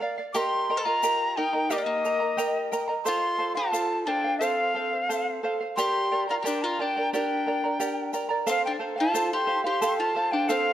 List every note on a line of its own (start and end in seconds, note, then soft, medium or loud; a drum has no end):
0.00 0.17 A#4 medium
0.00 0.18 D5 medium
0.00 0.16 F5 medium
0.18 0.34 D5 soft
0.18 0.34 F5 medium
0.33 0.68 G4 medium
0.33 0.77 G4 medium
0.33 0.69 A#4 medium
0.33 0.69 D#5 medium
0.33 0.69 G5 medium
0.33 0.69 A#5 loud
0.33 0.38 D6 medium
0.33 shaker medium
0.37 0.76 C6 loud
0.70 0.86 A#4 medium
0.70 0.85 D#5 medium
0.70 0.86 G5 medium
0.70 0.84 A#5 medium
0.76 0.85 A4 medium
0.76 0.86 C6 medium
0.84 1.37 F4 medium
0.84 1.03 A#4 soft
0.84 1.02 D#5 soft
0.84 1.38 A#5 loud
0.84 1.02 A#5 soft
1.03 1.37 G4 medium
1.03 1.36 A#4 medium
1.03 1.37 D#5 medium
1.03 1.36 G5 medium
1.03 1.37 A#5 medium
1.03 shaker loud
1.37 1.71 D#4 medium
1.37 1.54 A#4 medium
1.37 1.53 D#5 medium
1.37 1.72 G5 medium
1.37 1.54 G5 medium
1.37 1.52 A#5 medium
1.53 1.69 A#4 soft
1.53 1.69 D#5 soft
1.53 1.70 A#5 medium
1.70 1.77 A#3 medium
1.70 2.04 G4 medium
1.70 2.04 A#4 medium
1.70 2.05 D#5 medium
1.70 1.78 D#5 medium
1.70 2.03 G5 medium
1.70 2.05 A#5 medium
1.70 shaker medium
1.77 1.84 A#3 medium
1.77 1.85 D5 medium
1.84 2.74 A#3 medium
1.84 2.72 D#5 medium
2.04 2.20 A#4 medium
2.04 2.20 D#5 medium
2.04 2.21 G5 medium
2.04 2.19 A#5 medium
2.04 shaker medium
2.20 2.37 A#4 soft
2.20 2.37 D#5 soft
2.20 2.37 A#5 medium
2.37 2.72 G4 medium
2.37 2.71 A#4 medium
2.37 2.72 D#5 medium
2.37 2.70 G5 medium
2.37 2.72 A#5 medium
2.37 shaker loud
2.72 2.88 A#4 medium
2.72 2.88 D#5 medium
2.72 2.89 G5 medium
2.72 2.86 A#5 medium
2.72 shaker medium
2.88 3.05 A#4 soft
2.88 3.06 D#5 soft
2.88 3.06 A#5 medium
3.05 3.55 F4 medium
3.05 3.37 A4 medium
3.05 3.38 C5 medium
3.05 3.38 F5 medium
3.05 3.53 C6 loud
3.05 shaker medium
3.38 3.56 A4 medium
3.38 3.56 C5 medium
3.38 3.54 F5 medium
3.55 4.04 F4 medium
3.55 3.71 C5 soft
3.55 3.72 F5 soft
3.55 4.03 A5 medium
3.72 4.06 A4 medium
3.72 4.07 C5 medium
3.72 4.08 F5 medium
3.72 shaker loud
4.05 4.39 D4 medium
4.05 4.25 A4 medium
4.05 4.24 C5 medium
4.05 4.38 G5 medium
4.05 4.09 A5 medium
4.09 4.23 F5 medium
4.24 4.40 C5 soft
4.24 4.40 F5 medium
4.38 5.39 C4 medium
4.38 4.73 A4 medium
4.38 4.74 C5 medium
4.38 5.38 F5 medium
4.38 4.75 F5 medium
4.38 shaker loud
4.74 4.92 A4 medium
4.74 4.93 C5 medium
4.74 4.91 F5 medium
4.93 5.08 C5 soft
4.93 5.09 F5 soft
5.09 5.42 A4 medium
5.09 5.42 C5 medium
5.09 5.43 F5 medium
5.09 shaker medium
5.43 5.60 A4 medium
5.43 5.61 C5 medium
5.43 5.59 F5 medium
5.61 5.77 C5 soft
5.61 5.77 F5 medium
5.76 6.11 G4 medium
5.76 6.26 G4 medium
5.76 6.11 A#4 medium
5.76 6.11 D5 medium
5.76 6.10 G5 medium
5.76 6.11 A#5 medium
5.76 6.24 C6 loud
5.76 shaker medium
6.11 6.29 A#4 medium
6.11 6.28 D5 medium
6.11 6.28 G5 medium
6.11 6.26 A#5 medium
6.28 6.36 F4 medium
6.28 6.43 A#4 soft
6.28 6.44 D5 soft
6.28 6.44 A#5 soft
6.28 6.35 A#5 medium
6.40 6.47 G4 medium
6.40 6.78 G4 medium
6.40 6.78 G5 medium
6.40 6.47 A#5 medium
6.45 6.64 D4 medium
6.45 6.78 A#4 medium
6.45 6.79 D5 medium
6.45 6.64 G5 medium
6.45 6.79 A#5 medium
6.45 shaker medium
6.62 6.82 F4 medium
6.62 6.82 A#5 medium
6.79 7.14 D4 medium
6.79 6.96 A#4 medium
6.79 6.96 D5 medium
6.79 6.96 G5 medium
6.79 7.13 G5 medium
6.79 6.95 A#5 medium
6.96 7.12 A#4 soft
6.96 7.12 D5 medium
6.96 7.13 A#5 soft
7.13 8.11 D4 medium
7.13 7.47 G4 medium
7.13 7.45 A#4 medium
7.13 7.47 D5 medium
7.13 7.46 G5 medium
7.13 8.10 G5 medium
7.13 7.47 A#5 medium
7.13 shaker medium
7.47 7.63 A#4 medium
7.47 7.64 D5 medium
7.47 7.63 G5 medium
7.47 7.63 A#5 medium
7.64 7.79 A#4 soft
7.64 7.79 D5 soft
7.64 7.79 A#5 soft
7.80 8.13 G4 medium
7.80 8.12 A#4 medium
7.80 8.13 D5 medium
7.80 8.12 G5 medium
7.80 8.13 A#5 medium
7.80 shaker medium
8.13 8.29 A#4 medium
8.13 8.29 D5 medium
8.13 8.30 G5 medium
8.13 8.28 A#5 medium
8.13 shaker medium
8.29 8.46 A#4 soft
8.29 8.47 D5 medium
8.29 8.47 A#5 medium
8.46 8.64 C4 medium
8.46 8.78 A4 medium
8.46 8.79 C5 medium
8.46 8.80 F5 medium
8.46 8.64 F5 medium
8.46 shaker loud
8.65 8.76 D4 medium
8.65 8.73 G5 medium
8.79 8.97 A4 medium
8.79 8.96 C5 medium
8.79 8.95 F5 medium
8.96 9.13 C5 soft
8.96 9.13 F5 medium
8.96 9.29 A5 medium
9.00 9.30 F4 medium
9.14 9.45 A4 medium
9.14 9.46 C5 medium
9.14 9.47 F5 medium
9.14 shaker loud
9.33 9.64 G4 medium
9.33 9.64 C6 medium
9.46 9.64 A4 medium
9.46 9.64 C5 medium
9.46 9.63 F5 medium
9.64 9.97 G4 medium
9.64 9.81 C5 soft
9.64 9.81 F5 medium
9.64 9.96 C6 medium
9.81 10.14 A4 loud
9.81 10.15 C5 medium
9.81 10.15 F5 loud
9.81 shaker loud
9.97 10.33 F4 medium
9.97 10.33 A5 medium
10.15 10.32 A4 medium
10.15 10.32 C5 medium
10.15 10.31 F5 medium
10.31 10.49 D4 medium
10.31 10.48 C5 soft
10.31 10.49 F5 medium
10.31 10.50 G5 medium
10.49 10.73 C4 medium
10.49 10.73 A4 medium
10.49 10.73 C5 medium
10.49 10.73 F5 loud
10.49 10.73 F5 medium
10.49 shaker loud